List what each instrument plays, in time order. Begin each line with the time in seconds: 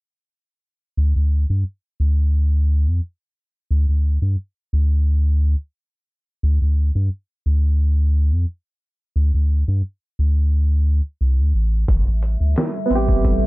0.97 analog synth bass D2
1.16 analog synth bass D2
1.50 analog synth bass G2
2.00 analog synth bass D2
2.87 analog synth bass F2
3.70 analog synth bass D2
3.88 analog synth bass D2
4.22 analog synth bass G2
4.73 analog synth bass D2
6.43 analog synth bass D2
6.61 analog synth bass D2
6.95 analog synth bass G2
7.46 analog synth bass D2
8.31 analog synth bass F2
9.16 analog synth bass D2
9.34 analog synth bass D2
9.68 analog synth bass G2
10.19 analog synth bass D2
11.21 analog synth bass C2
11.39 analog synth bass D2
11.55 analog synth bass A1
11.88 analog synth bass A1, analog synth pad G3 A4 E5, kick, closed hi-hat
12.07 analog synth bass A1
12.23 closed hi-hat
12.40 analog synth bass D2
12.56 snare, closed hi-hat
12.86 felt piano B3
12.90 analog synth bass A1, felt piano C4, closed hi-hat
12.95 felt piano G4
13.09 kick
13.25 kick, closed hi-hat